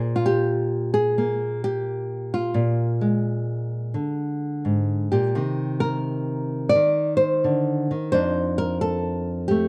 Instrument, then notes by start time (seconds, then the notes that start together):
nylon-string guitar
Already playing: A#2 C5
0.16 F4
0.26 G4
0.94 G#4
1.18 A#3
1.64 G4
2.34 F4
2.54 A#2
3.01 G#3
3.94 D3
4.65 G#2
5.12 A#2 G4
5.35 C3 D#3
5.80 A#4
6.69 D5
6.75 D#3
7.17 C5
7.44 D3
7.91 D#3
8.12 F2 D4 D#4 C5
8.58 A#4
8.81 A4
9.48 A3 G4